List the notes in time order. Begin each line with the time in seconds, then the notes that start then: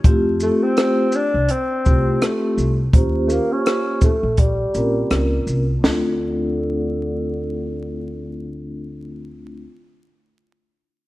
0.04 F2 A3 C4 E4 F4 G4, kick, closed hi-hat
0.40 A3, shaker
0.63 C4
0.77 cross-stick, closed hi-hat
1.12 D4, shaker
1.34 C2
1.49 C4, closed hi-hat
1.84 C2 A3 C4 E4 F4 G4, kick, shaker
2.22 A3, cross-stick, closed hi-hat
2.58 C2, shaker
2.93 D#2 A#3 C#4 F4 G4 C5, kick, closed hi-hat
3.27 A3, shaker
3.32 A#3
3.52 C#4
3.66 cross-stick, closed hi-hat
4.01 A3, kick, closed hi-hat, shaker
4.23 A#1
4.37 G3, kick, closed hi-hat
4.74 A#1 A#3 C4 C#4 F4 A#4, closed hi-hat, shaker
5.11 C#2, cross-stick, closed hi-hat
5.47 C2, shaker
5.79 A3 C4 D4
5.83 D2 D3 E4 F4, snare